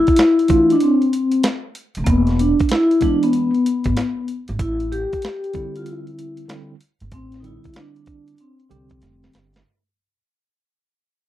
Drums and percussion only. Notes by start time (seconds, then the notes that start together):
0.07 kick, closed hi-hat
0.16 snare, closed hi-hat
0.39 closed hi-hat
0.48 kick, closed hi-hat
0.70 closed hi-hat
0.80 closed hi-hat
1.02 closed hi-hat
1.13 closed hi-hat
1.32 closed hi-hat
1.43 snare, closed hi-hat
1.75 closed hi-hat
1.95 closed hi-hat
2.06 kick, closed hi-hat
2.27 snare, closed hi-hat
2.39 closed hi-hat
2.60 kick, closed hi-hat
2.69 snare, closed hi-hat
2.91 closed hi-hat
3.01 kick, closed hi-hat
3.23 closed hi-hat
3.33 closed hi-hat
3.54 closed hi-hat
3.66 closed hi-hat
3.84 kick, closed hi-hat
3.97 snare, closed hi-hat
4.28 closed hi-hat
4.48 closed hi-hat
4.59 kick, closed hi-hat
4.80 closed hi-hat
4.92 closed hi-hat
5.13 kick, closed hi-hat
5.22 snare, closed hi-hat
5.44 closed hi-hat
5.53 kick, closed hi-hat
5.75 closed hi-hat
5.86 closed hi-hat
6.07 closed hi-hat
6.19 closed hi-hat
6.37 closed hi-hat
6.49 snare, closed hi-hat
6.81 closed hi-hat
7.00 closed hi-hat
7.12 kick, closed hi-hat
7.32 snare, closed hi-hat
7.44 closed hi-hat
7.64 kick, closed hi-hat
7.74 snare, closed hi-hat
7.96 closed hi-hat
8.06 kick, closed hi-hat
8.28 closed hi-hat
8.38 closed hi-hat
8.60 closed hi-hat
8.71 closed hi-hat
8.90 kick, closed hi-hat
9.02 snare, closed hi-hat
9.24 snare
9.33 snare, closed hi-hat
9.54 snare, closed hi-hat